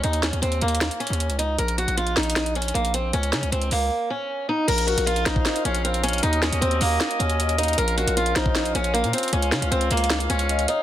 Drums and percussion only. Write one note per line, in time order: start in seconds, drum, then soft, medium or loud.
0.04 closed hi-hat medium
0.13 closed hi-hat medium
0.23 snare loud
0.23 closed hi-hat medium
0.33 closed hi-hat medium
0.43 closed hi-hat medium
0.52 closed hi-hat soft
0.61 closed hi-hat soft
0.61 open hi-hat medium
0.68 closed hi-hat medium
0.75 closed hi-hat medium
0.81 snare loud
0.81 closed hi-hat medium
0.91 closed hi-hat medium
1.00 closed hi-hat soft
1.07 closed hi-hat medium
1.13 closed hi-hat medium
1.20 closed hi-hat medium
1.30 closed hi-hat medium
1.39 closed hi-hat loud
1.59 closed hi-hat medium
1.68 closed hi-hat medium
1.78 closed hi-hat medium
1.88 closed hi-hat medium
1.98 closed hi-hat medium
2.07 closed hi-hat soft
2.17 snare loud
2.17 closed hi-hat soft
2.23 closed hi-hat medium
2.30 closed hi-hat medium
2.36 snare loud
2.36 closed hi-hat medium
2.46 closed hi-hat medium
2.55 closed hi-hat soft
2.62 closed hi-hat medium
2.68 closed hi-hat medium
2.75 closed hi-hat medium
2.85 closed hi-hat medium
2.94 closed hi-hat medium
3.13 closed hi-hat medium
3.23 closed hi-hat medium
3.33 snare loud
3.33 closed hi-hat medium
3.43 closed hi-hat medium
3.52 closed hi-hat medium
3.62 closed hi-hat soft
3.71 open hi-hat medium
4.68 closed hi-hat medium
4.68 crash loud
4.78 closed hi-hat medium
4.88 closed hi-hat medium
4.98 closed hi-hat medium
5.07 closed hi-hat medium
5.16 closed hi-hat soft
5.26 snare loud
5.26 closed hi-hat medium
5.36 kick medium
5.45 snare loud
5.45 closed hi-hat medium
5.56 closed hi-hat medium
5.65 closed hi-hat medium
5.75 closed hi-hat medium
5.85 closed hi-hat medium
5.94 closed hi-hat medium
6.04 closed hi-hat medium
6.08 closed hi-hat medium
6.13 closed hi-hat medium
6.18 closed hi-hat medium
6.23 closed hi-hat medium
6.33 closed hi-hat medium
6.42 snare loud
6.42 closed hi-hat medium
6.53 closed hi-hat medium
6.62 closed hi-hat medium
6.71 closed hi-hat soft
6.81 open hi-hat medium
7.00 snare loud
7.00 closed hi-hat medium
7.11 closed hi-hat medium
7.20 closed hi-hat medium
7.30 closed hi-hat medium
7.40 closed hi-hat medium
7.49 closed hi-hat medium
7.59 closed hi-hat medium
7.63 closed hi-hat medium
7.68 closed hi-hat medium
7.73 closed hi-hat medium
7.78 closed hi-hat medium
7.88 closed hi-hat medium
7.98 closed hi-hat medium
8.08 closed hi-hat medium
8.17 closed hi-hat medium
8.26 closed hi-hat soft
8.36 snare loud
8.36 closed hi-hat medium
8.46 kick medium
8.55 snare loud
8.55 closed hi-hat medium
8.65 closed hi-hat medium
8.75 closed hi-hat medium
8.84 closed hi-hat medium
8.95 closed hi-hat medium
9.04 closed hi-hat medium
9.13 closed hi-hat medium
9.18 closed hi-hat medium
9.23 closed hi-hat medium
9.28 closed hi-hat medium
9.33 closed hi-hat medium
9.42 closed hi-hat medium
9.52 snare loud
9.52 closed hi-hat medium
9.62 closed hi-hat medium
9.72 closed hi-hat medium
9.81 closed hi-hat soft
9.91 closed hi-hat medium
9.91 open hi-hat medium
9.97 closed hi-hat medium
10.04 closed hi-hat medium
10.10 snare loud
10.10 closed hi-hat medium
10.20 closed hi-hat medium
10.30 closed hi-hat medium
10.39 closed hi-hat medium
10.49 closed hi-hat medium
10.59 closed hi-hat medium
10.68 closed hi-hat medium